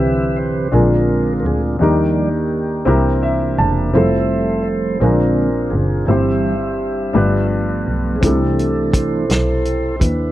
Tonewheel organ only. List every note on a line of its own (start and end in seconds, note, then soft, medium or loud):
0.00 0.67 D3 soft
0.00 0.68 E3 soft
0.00 0.68 C4 soft
0.00 0.68 G4 medium
0.00 0.69 B4 medium
0.00 0.39 E5 medium
0.37 0.74 C5 medium
0.73 1.76 D3 soft
0.73 1.76 G#3 soft
0.73 1.77 C4 soft
0.73 1.77 D4 soft
0.73 1.77 F4 medium
0.73 1.33 A#4 medium
1.40 1.46 A#4 soft
1.46 1.62 G#4 medium
1.82 2.29 F3 soft
1.82 2.29 G3 soft
1.82 2.87 A#3 soft
1.82 3.21 G4 medium
1.82 2.29 D5 soft
2.88 3.91 E3 soft
2.88 3.91 A#3 soft
2.88 3.91 D4 soft
3.95 4.98 F3 soft
3.95 4.98 G3 soft
3.95 4.99 A3 soft
3.95 4.98 A4 medium
3.95 4.63 C5 medium
3.95 4.68 E5 medium
4.64 5.02 C5 medium
5.01 5.49 D3 soft
5.01 5.50 G#3 soft
5.01 5.50 C4 soft
5.01 6.06 D4 soft
5.01 6.06 F4 medium
5.01 5.75 A#4 medium
5.70 6.08 G#4 medium
6.06 6.55 E3 soft
6.06 6.56 G3 soft
6.06 6.57 C4 medium
6.06 7.46 G4 medium
6.06 7.47 E5 soft
7.14 8.18 F3 soft
7.14 8.18 A3 soft
7.14 8.18 B3 soft
8.16 8.23 G#4 medium
8.21 9.25 E3 soft
8.21 9.25 A3 soft
8.21 9.26 D4 soft
8.21 8.91 E4 medium
8.21 8.91 A4 medium
8.92 9.96 E4 medium
8.92 9.96 A4 medium
8.92 10.04 C5 medium
10.00 10.32 D4 medium
10.00 10.32 E4 medium
10.00 10.32 B4 medium